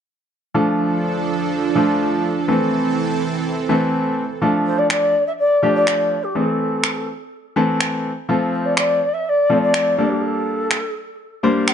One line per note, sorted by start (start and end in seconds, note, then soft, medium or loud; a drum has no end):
0.54 1.25 F3 medium
0.54 2.46 F3 medium
0.54 1.25 A3 medium
0.54 2.46 D4 medium
0.54 1.25 D4 medium
0.54 2.46 A4 medium
0.54 1.25 A4 medium
1.75 2.28 F3 medium
1.75 2.28 A3 medium
1.75 2.28 D4 medium
1.75 2.28 A4 medium
2.48 3.18 E3 medium
2.48 4.40 E3 medium
2.48 3.18 A3 medium
2.48 3.19 C4 medium
2.48 4.40 C4 medium
2.48 4.40 A4 medium
2.48 3.19 A4 medium
3.69 4.22 E3 medium
3.69 4.22 A3 medium
3.69 4.22 C4 medium
3.69 4.22 A4 medium
4.42 5.12 F3 medium
4.42 5.12 A3 medium
4.42 5.12 D4 medium
4.42 5.12 A4 medium
4.66 4.80 C5 medium
4.78 4.90 D5 medium
4.90 5.24 D5 medium
4.90 finger snap loud
5.26 5.32 E5 medium
5.39 5.72 D5 loud
5.62 6.15 F3 medium
5.62 6.15 A3 medium
5.62 6.16 D4 medium
5.62 6.16 G4 medium
5.75 6.25 D5 loud
5.87 finger snap loud
6.23 6.37 G4 medium
6.35 7.05 E3 medium
6.35 7.06 A3 medium
6.35 7.06 C4 medium
6.35 6.49 G#4 medium
6.35 7.06 A4 medium
6.49 7.08 A4 medium
6.84 finger snap loud
7.56 8.09 E3 medium
7.56 8.09 A3 medium
7.56 8.09 C4 medium
7.56 8.09 A4 medium
7.81 finger snap loud
8.29 8.99 F3 medium
8.29 8.99 A3 medium
8.29 8.99 C4 medium
8.29 8.99 A4 medium
8.53 8.67 C5 medium
8.65 8.76 D5 medium
8.77 9.15 D5 loud
8.77 finger snap loud
9.13 9.25 E5 medium
9.25 9.61 D5 medium
9.25 9.30 E5 medium
9.49 9.98 F3 medium
9.49 9.98 A3 medium
9.49 9.98 C4 medium
9.49 9.97 A4 medium
9.62 10.12 D5 loud
9.74 finger snap loud
9.98 10.76 G3 medium
9.98 10.76 A#3 medium
9.98 10.76 D4 medium
9.98 10.76 A4 medium
10.10 10.24 G4 medium
10.22 10.95 A4 medium
10.71 finger snap loud
11.43 11.74 G3 medium
11.43 11.74 A#3 medium
11.43 11.74 D4 medium
11.43 11.74 C5 medium
11.68 11.74 F5 loud
11.68 11.72 G5 medium
11.68 finger snap loud